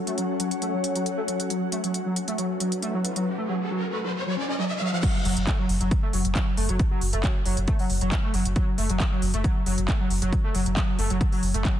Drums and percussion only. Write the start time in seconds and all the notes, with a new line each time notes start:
0.07 closed hi-hat
0.18 closed hi-hat
0.40 closed hi-hat
0.51 closed hi-hat
0.62 closed hi-hat
0.84 closed hi-hat
0.95 closed hi-hat
1.06 closed hi-hat
1.28 closed hi-hat
1.40 closed hi-hat
1.50 closed hi-hat
1.72 closed hi-hat
1.84 closed hi-hat
1.94 closed hi-hat
2.16 closed hi-hat
2.28 closed hi-hat
2.38 closed hi-hat
2.60 closed hi-hat
2.72 closed hi-hat
2.82 closed hi-hat
3.05 closed hi-hat
3.16 closed hi-hat
5.03 kick, closed hi-hat, crash
5.25 open hi-hat
5.37 closed hi-hat
5.47 kick, clap, closed hi-hat
5.69 open hi-hat
5.81 closed hi-hat
5.91 kick, closed hi-hat
6.13 open hi-hat
6.25 closed hi-hat
6.35 kick, clap, closed hi-hat
6.57 open hi-hat
6.69 closed hi-hat
6.79 kick, closed hi-hat
7.01 open hi-hat
7.13 closed hi-hat
7.24 kick, clap, closed hi-hat
7.46 open hi-hat
7.57 closed hi-hat
7.68 kick, closed hi-hat
7.79 open hi-hat
7.90 open hi-hat
8.01 closed hi-hat
8.12 kick, clap, closed hi-hat
8.34 open hi-hat
8.45 closed hi-hat
8.56 kick, closed hi-hat
8.78 open hi-hat
8.89 closed hi-hat
9.00 kick, clap, closed hi-hat
9.22 open hi-hat
9.34 closed hi-hat
9.44 kick, closed hi-hat
9.66 open hi-hat
9.78 closed hi-hat
9.88 kick, clap, closed hi-hat
10.10 open hi-hat
10.22 closed hi-hat
10.33 kick, closed hi-hat
10.55 open hi-hat
10.66 closed hi-hat
10.77 kick, clap, closed hi-hat
10.99 open hi-hat
11.10 closed hi-hat
11.21 kick, closed hi-hat
11.32 open hi-hat
11.43 open hi-hat
11.54 closed hi-hat
11.65 kick, clap, closed hi-hat